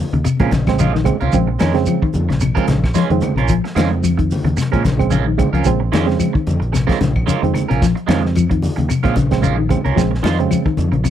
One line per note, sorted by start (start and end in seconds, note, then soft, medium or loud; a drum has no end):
0.13 0.23 D#2 medium
0.13 0.19 C#3 medium
0.13 muted clean electric guitar stroke soft
0.13 closed hi-hat soft
0.24 0.39 C3 medium
0.24 muted clean electric guitar stroke soft
0.24 closed hi-hat medium
0.24 high conga soft
0.24 claves medium
0.24 shekere medium
0.39 0.50 A#2 medium
0.39 0.48 C#3 medium
0.39 0.51 G#3 medium
0.39 0.49 G#3 medium
0.39 0.48 C4 medium
0.39 0.51 C#4 medium
0.39 0.51 F4 medium
0.39 0.51 A#4 medium
0.39 kick medium
0.39 closed hi-hat soft
0.39 high conga medium
0.51 1.11 A#1 medium
0.51 0.66 C#3 medium
0.51 muted clean electric guitar stroke soft
0.51 kick medium
0.51 snare soft
0.51 closed hi-hat soft
0.51 high conga medium
0.51 shekere soft
0.67 0.80 C#3 medium
0.67 0.80 G#3 medium
0.67 0.80 C4 loud
0.67 kick medium
0.67 snare soft
0.67 closed hi-hat soft
0.67 low conga medium
0.67 claves medium
0.79 0.88 C#3 medium
0.79 0.94 G#3 medium
0.79 0.93 C#4 medium
0.79 0.93 F4 medium
0.79 0.93 A#4 medium
0.79 closed hi-hat medium
0.79 high conga medium
0.79 shekere medium
0.94 1.09 D#3 medium
0.94 muted clean electric guitar stroke soft
0.94 snare soft
1.04 1.16 C#3 medium
1.04 1.16 G#3 medium
1.04 1.16 C4 loud
1.04 muted clean electric guitar stroke soft
1.04 kick medium
1.04 closed hi-hat soft
1.04 low conga medium
1.04 claves medium
1.04 shekere soft
1.21 1.32 C#2 medium
1.21 1.28 C3 medium
1.21 1.37 C#4 soft
1.21 1.36 F4 medium
1.21 1.36 A#4 medium
1.21 closed hi-hat soft
1.32 1.56 A#1 medium
1.32 1.49 C#3 medium
1.32 1.48 F3 medium
1.32 1.49 G#3 medium
1.32 1.49 C4 loud
1.32 kick medium
1.32 closed hi-hat medium
1.32 shekere medium
1.47 muted clean electric guitar stroke soft
1.59 1.84 F2 medium
1.59 1.75 D#3 medium
1.59 1.75 G#3 medium
1.59 1.75 C#4 medium
1.59 1.74 A#4 medium
1.59 snare medium
1.59 closed hi-hat soft
1.59 high conga medium
1.59 claves medium
1.59 shekere soft
1.74 2.02 C#3 loud
1.74 2.02 G#3 medium
1.74 2.03 C4 loud
1.74 muted clean electric guitar stroke soft
1.74 snare soft
1.74 closed hi-hat soft
1.86 1.96 F3 medium
1.86 closed hi-hat medium
1.86 high conga soft
1.86 claves medium
1.86 shekere medium
2.02 2.17 D#3 medium
2.02 muted clean electric guitar stroke soft
2.02 muted fingered electric bass stroke soft
2.02 kick medium
2.14 2.28 F2 medium
2.14 closed hi-hat medium
2.14 low conga medium
2.14 shekere soft
2.29 2.52 A#1 medium
2.29 2.36 C#3 medium
2.29 muted clean electric guitar stroke soft
2.29 snare soft
2.29 closed hi-hat soft
2.40 2.56 C3 medium
2.40 muted clean electric guitar stroke soft
2.40 closed hi-hat medium
2.40 high conga soft
2.40 claves medium
2.40 shekere medium
2.55 2.74 C#3 medium
2.55 2.66 G#3 medium
2.55 2.74 G#3 medium
2.55 2.74 C4 medium
2.55 2.66 C#4 medium
2.55 2.67 F4 medium
2.55 2.67 A#4 medium
2.55 kick medium
2.55 closed hi-hat soft
2.55 high conga medium
2.67 2.91 A#1 medium
2.67 2.82 C#3 medium
2.67 muted clean electric guitar stroke soft
2.67 kick medium
2.67 snare soft
2.67 closed hi-hat soft
2.67 high conga medium
2.67 shekere soft
2.84 kick medium
2.84 snare soft
2.84 claves medium
2.94 3.03 F3 medium
2.94 3.10 G#3 medium
2.94 3.09 C#4 medium
2.94 3.10 F4 medium
2.94 muted clean electric guitar stroke medium
2.94 snare soft
2.94 closed hi-hat medium
2.94 high conga medium
2.94 shekere medium
3.10 3.20 F2 medium
3.10 3.33 C#3 medium
3.10 3.25 D#3 medium
3.10 3.33 G#3 medium
3.10 3.33 C4 medium
3.10 muted clean electric guitar stroke soft
3.10 closed hi-hat soft
3.21 muted fingered electric bass stroke soft
3.21 muted clean electric guitar stroke soft
3.21 closed hi-hat soft
3.21 low conga medium
3.21 claves medium
3.21 shekere soft
3.36 3.59 A#1 medium
3.36 3.43 C3 medium
3.36 3.53 C#4 soft
3.36 3.53 F4 medium
3.36 3.52 A#4 medium
3.36 closed hi-hat soft
3.48 3.63 F3 medium
3.48 kick medium
3.48 closed hi-hat medium
3.48 shekere medium
3.64 muted clean electric guitar stroke soft
3.64 snare soft
3.64 closed hi-hat soft
3.75 4.35 F2 medium
3.75 4.09 C#3 medium
3.75 3.90 D#3 medium
3.75 3.91 G#3 medium
3.75 4.10 G#3 medium
3.75 4.10 C4 medium
3.75 3.90 C#4 medium
3.75 3.90 F4 medium
3.75 3.89 A#4 medium
3.75 snare medium
3.75 closed hi-hat medium
3.75 high conga medium
3.75 claves medium
3.75 shekere soft
3.91 muted clean electric guitar stroke soft
4.04 4.11 F3 medium
4.04 closed hi-hat medium
4.04 high conga soft
4.04 claves medium
4.04 shekere medium
4.17 4.32 D#3 medium
4.17 muted clean electric guitar stroke soft
4.17 kick medium
4.17 closed hi-hat soft
4.31 open hi-hat medium
4.31 low conga medium
4.31 shekere soft
4.44 4.55 D#2 medium
4.44 4.51 C#3 medium
4.44 muted clean electric guitar stroke soft
4.44 closed hi-hat soft
4.44 high conga medium
4.57 4.72 C3 medium
4.57 muted clean electric guitar stroke soft
4.57 snare soft
4.57 closed hi-hat medium
4.57 high conga soft
4.57 claves medium
4.57 shekere medium
4.71 4.83 A#2 medium
4.71 4.80 C#3 medium
4.71 4.80 G#3 medium
4.71 4.83 G#3 medium
4.71 4.80 C4 medium
4.71 4.83 C#4 medium
4.71 4.83 A#4 medium
4.71 kick medium
4.71 closed hi-hat soft
4.71 high conga medium
4.84 5.43 A#1 medium
4.84 4.98 C#3 medium
4.84 muted clean electric guitar stroke soft
4.84 kick medium
4.84 snare soft
4.84 closed hi-hat soft
4.84 high conga medium
4.84 shekere soft
4.98 5.11 C#3 medium
4.98 5.11 G#3 medium
4.98 5.11 C4 loud
4.98 kick medium
4.98 closed hi-hat soft
4.98 claves medium
5.10 5.19 C#3 medium
5.10 5.26 G#3 medium
5.10 5.26 C#4 medium
5.10 5.25 F4 medium
5.10 5.25 A#4 medium
5.10 closed hi-hat medium
5.10 high conga medium
5.10 shekere medium
5.26 5.40 D#3 medium
5.26 muted clean electric guitar stroke soft
5.38 5.48 C#3 medium
5.38 5.48 G#3 medium
5.38 5.49 C4 medium
5.38 muted clean electric guitar stroke soft
5.38 kick medium
5.38 closed hi-hat soft
5.38 low conga medium
5.38 claves medium
5.38 shekere soft
5.53 5.63 C#2 medium
5.53 5.60 F3 medium
5.53 5.68 C#4 soft
5.53 5.68 F4 soft
5.53 5.68 A#4 soft
5.53 closed hi-hat soft
5.64 5.89 A#1 medium
5.64 5.80 C#3 medium
5.64 5.80 F3 medium
5.64 5.81 G#3 medium
5.64 5.81 C4 loud
5.64 kick medium
5.64 closed hi-hat medium
5.64 high conga soft
5.64 shekere medium
5.80 muted clean electric guitar stroke soft
5.92 6.15 F2 medium
5.92 6.06 D#3 medium
5.92 6.07 G#3 medium
5.92 6.06 C#4 medium
5.92 6.06 F4 medium
5.92 6.06 A#4 medium
5.92 snare medium
5.92 closed hi-hat soft
5.92 high conga medium
5.92 claves medium
5.92 shekere soft
6.06 6.34 C#3 medium
6.06 6.35 G#3 medium
6.06 6.34 C4 medium
6.06 muted clean electric guitar stroke soft
6.06 snare soft
6.06 closed hi-hat soft
6.19 6.27 F3 medium
6.19 closed hi-hat medium
6.19 high conga soft
6.19 claves medium
6.19 shekere medium
6.33 6.49 D#3 medium
6.33 muted clean electric guitar stroke soft
6.33 muted fingered electric bass stroke soft
6.33 kick medium
6.47 6.59 F2 medium
6.47 closed hi-hat soft
6.47 low conga medium
6.47 shekere soft
6.60 6.84 A#1 medium
6.60 muted clean electric guitar stroke soft
6.60 closed hi-hat soft
6.72 6.88 C3 medium
6.72 muted clean electric guitar stroke soft
6.72 snare soft
6.72 closed hi-hat medium
6.72 high conga soft
6.72 claves medium
6.72 shekere medium
6.87 7.05 C#3 medium
6.87 7.05 G#3 medium
6.87 6.98 G#3 medium
6.87 7.05 C4 medium
6.87 6.98 C#4 medium
6.87 6.99 F4 medium
6.87 6.99 A#4 medium
6.87 kick medium
6.87 snare soft
6.87 closed hi-hat soft
6.87 high conga medium
6.99 7.23 A#1 medium
6.99 7.14 C#3 medium
6.99 muted clean electric guitar stroke soft
6.99 kick medium
6.99 snare soft
6.99 closed hi-hat soft
6.99 high conga medium
6.99 shekere soft
7.16 kick medium
7.16 claves medium
7.26 7.35 C#3 medium
7.26 7.41 G#3 medium
7.26 7.41 C#4 medium
7.26 7.41 F4 medium
7.26 7.41 A#4 medium
7.26 closed hi-hat medium
7.26 high conga medium
7.26 shekere medium
7.42 7.52 F2 medium
7.42 7.64 C#3 medium
7.42 7.57 D#3 medium
7.42 7.65 G#3 medium
7.42 7.65 C4 medium
7.42 muted clean electric guitar stroke soft
7.42 closed hi-hat soft
7.54 muted clean electric guitar stroke soft
7.54 muted fingered electric bass stroke soft
7.54 closed hi-hat soft
7.54 low conga medium
7.54 claves medium
7.54 shekere soft
7.68 7.93 A#1 medium
7.68 7.76 C3 medium
7.68 7.84 C#4 soft
7.68 7.84 F4 medium
7.68 7.83 A#4 medium
7.68 closed hi-hat soft
7.82 7.96 F3 medium
7.82 kick medium
7.82 snare soft
7.82 closed hi-hat medium
7.82 shekere medium
7.95 muted clean electric guitar stroke soft
7.95 closed hi-hat soft
8.07 8.67 F2 medium
8.07 8.40 C#3 medium
8.07 8.23 D#3 medium
8.07 8.22 G#3 medium
8.07 8.41 G#3 medium
8.07 8.41 C4 medium
8.07 8.22 C#4 medium
8.07 8.22 F4 medium
8.07 8.21 A#4 medium
8.07 snare medium
8.07 closed hi-hat soft
8.07 high conga medium
8.07 claves medium
8.07 shekere soft
8.22 muted clean electric guitar stroke soft
8.22 snare soft
8.36 8.44 F3 medium
8.36 closed hi-hat medium
8.36 high conga soft
8.36 claves medium
8.36 shekere medium
8.50 8.64 D#3 medium
8.50 muted clean electric guitar stroke soft
8.50 kick medium
8.50 closed hi-hat soft
8.62 open hi-hat medium
8.62 low conga medium
8.62 shekere soft
8.76 8.87 D#2 medium
8.76 8.84 C#3 medium
8.76 muted clean electric guitar stroke soft
8.76 closed hi-hat soft
8.76 high conga medium
8.89 9.04 C3 medium
8.89 muted clean electric guitar stroke soft
8.89 closed hi-hat medium
8.89 high conga soft
8.89 claves medium
8.89 shekere medium
9.03 9.14 A#2 medium
9.03 9.12 C#3 medium
9.03 9.15 G#3 medium
9.03 9.12 G#3 medium
9.03 9.12 C4 medium
9.03 9.15 C#4 medium
9.03 9.15 F4 medium
9.03 9.15 A#4 medium
9.03 kick medium
9.03 closed hi-hat soft
9.03 high conga medium
9.16 9.74 A#1 medium
9.16 9.31 C#3 medium
9.16 muted clean electric guitar stroke soft
9.16 kick medium
9.16 closed hi-hat soft
9.16 high conga medium
9.16 shekere soft
9.31 9.43 C#3 medium
9.31 9.43 G#3 medium
9.31 9.43 C4 loud
9.31 kick medium
9.31 snare soft
9.31 closed hi-hat soft
9.31 claves medium
9.42 9.51 C#3 medium
9.42 9.57 G#3 medium
9.42 9.56 C#4 medium
9.42 9.56 F4 medium
9.42 9.56 A#4 medium
9.42 closed hi-hat medium
9.42 high conga medium
9.42 shekere medium
9.57 9.72 D#3 medium
9.57 muted clean electric guitar stroke soft
9.69 9.80 C#3 medium
9.69 9.80 G#3 medium
9.69 9.80 C4 medium
9.69 muted clean electric guitar stroke soft
9.69 kick medium
9.69 closed hi-hat soft
9.69 low conga medium
9.69 claves medium
9.69 shekere soft
9.85 9.95 C#2 medium
9.85 9.91 C3 medium
9.85 10.00 C#4 soft
9.85 10.00 F4 soft
9.85 9.99 A#4 medium
9.85 closed hi-hat soft
9.96 10.20 A#1 medium
9.96 10.12 C#3 medium
9.96 10.10 F3 medium
9.96 10.12 G#3 medium
9.96 10.12 C4 medium
9.96 kick medium
9.96 snare soft
9.96 closed hi-hat medium
9.96 shekere medium
10.11 muted clean electric guitar stroke soft
10.11 snare soft
10.23 10.46 F2 medium
10.23 10.37 D#3 medium
10.23 10.38 G#3 medium
10.23 10.38 F4 medium
10.23 muted clean electric guitar stroke medium
10.23 snare medium
10.23 closed hi-hat soft
10.23 high conga medium
10.23 claves medium
10.23 shekere soft
10.39 10.66 C#3 loud
10.39 10.67 G#3 medium
10.39 10.67 C4 medium
10.39 muted clean electric guitar stroke soft
10.39 closed hi-hat soft
10.51 10.58 F3 medium
10.51 closed hi-hat medium
10.51 high conga soft
10.51 claves medium
10.51 shekere medium
10.66 10.80 D#3 medium
10.66 muted clean electric guitar stroke soft
10.66 muted fingered electric bass stroke soft
10.66 kick medium
10.77 10.91 F2 medium
10.77 closed hi-hat soft
10.77 high conga medium
10.77 low conga medium
10.77 shekere soft
10.92 11.10 A#1 medium
10.92 10.98 C#3 medium
10.92 muted clean electric guitar stroke soft
10.92 closed hi-hat soft
11.04 11.10 C3 medium
11.04 muted clean electric guitar stroke soft
11.04 closed hi-hat medium
11.04 high conga soft
11.04 claves medium
11.04 shekere medium